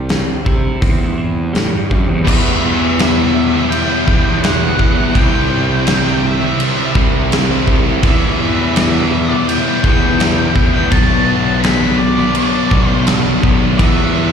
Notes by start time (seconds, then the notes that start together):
Already playing: C2 C3 E3 G3 E4
0.09 C4, snare, open hi-hat
0.45 C3 E4, kick
0.81 E2 C4, kick, open hi-hat
1.17 E3
1.53 A2 G3, snare, open hi-hat
1.73 G2
1.90 F#2 C4, kick
2.09 E2
2.25 E2 B2 E3 G3 B3 E4 E5, kick, crash
2.61 E3 G3 B3 E4
2.97 E3 G3 B3 E4 E5, snare, crash
3.16 G3 B3 E4
3.34 muted overdriven electric guitar stroke
3.51 G3 B3 E4
3.70 E3 G3 B3 E4 G5, crash
3.88 G3 B3 E4
4.05 E2 E3 G3 B3 E4, kick
4.42 E3 G3 B3 E4 F#5, snare, crash
4.59 G3 B3 E4
4.79 E2, kick
4.95 G3 B3 E4
5.12 C2 C3 G3 C4 E4, kick, crash
5.18 G5
5.48 C3 G3 C4 E4
5.84 C3 G3 C4 E4, snare, crash
6.03 G3 C4 E4
6.22 muted overdriven electric guitar stroke
6.26 E5
6.39 G3 C4 E4
6.58 C3 G3 C4 E4, crash
6.76 G3 C4 E4
6.94 C2 C3 G3 C4 E4, kick
7.30 C3 G3 C4 E4, snare, crash
7.48 G3 C4 E4
7.67 C2, kick
7.85 G3 C4 E4
8.02 E2 B2 E3 G3 B3 E4, kick, crash
8.08 E5
8.39 E3 G3 B3 E4
8.76 E3 G3 B3 E4 E5, snare, crash
8.94 G3 B3 E4
9.12 muted overdriven electric guitar stroke
9.29 G3 B3 E4 D5
9.47 E3 G3 B3 E4 G5, crash
9.66 G3 B3 E4
9.83 E2 E3 G3 B3 E4 G5, kick
10.19 E3 G3 B3 E4, snare, crash
10.37 G3 B3 E4
10.56 E2, kick
10.72 G3 B3 E4 G5
10.91 B1 B2 F#3 B3 D4 A5, kick, crash
11.27 B2 F#3 B3 D4
11.44 A5
11.54 A5
11.60 B2 F#3 B3 B5, crash
11.64 D4, snare
11.82 F#3 B3 D4
11.97 D5, muted overdriven electric guitar stroke
12.17 F#3 B3 D4
12.35 B2 F#3 B3 D4 D5, crash
12.53 F#3 B3 D4
12.70 B1 B2 F#3 B3 D4, kick
12.87 C5
13.06 B2 F#3 B3 D4, snare, crash
13.25 F#3 B3 D4
13.43 B1, kick
13.61 F#3 B3 D4
13.78 E2 B2 E3 G3 B3 E4 E5, kick, crash
14.14 E3 G3 B3 E4